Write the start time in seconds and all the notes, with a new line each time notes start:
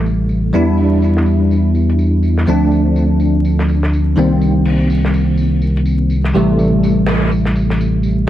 Already playing: A1 C3 E3 G3 A3
0.06 tambourine
0.29 tambourine
0.53 E2 G3 B3 D4 E4, tambourine
0.78 open hi-hat
1.02 tambourine
1.17 snare
1.26 tambourine
1.51 tambourine
1.75 tambourine
1.90 closed hi-hat
1.99 tambourine
2.23 tambourine
2.38 snare
2.47 D2 F3 A3 C4 D4, tambourine
2.71 tambourine
2.96 tambourine
3.20 tambourine
3.45 tambourine
3.59 snare
3.68 tambourine
3.83 snare
3.93 tambourine
4.16 C2 D#3 G3 A#3 C4, tambourine
4.41 tambourine
4.65 open hi-hat
4.90 tambourine
5.05 snare
5.14 tambourine
5.37 tambourine
5.62 tambourine
5.77 closed hi-hat
5.86 tambourine
6.10 tambourine
6.24 snare
6.34 A1 C3 E3 G3 A3, tambourine
6.59 tambourine
6.83 tambourine
7.06 snare, tambourine
7.31 tambourine
7.45 snare
7.56 tambourine
7.70 snare
7.81 tambourine
8.03 tambourine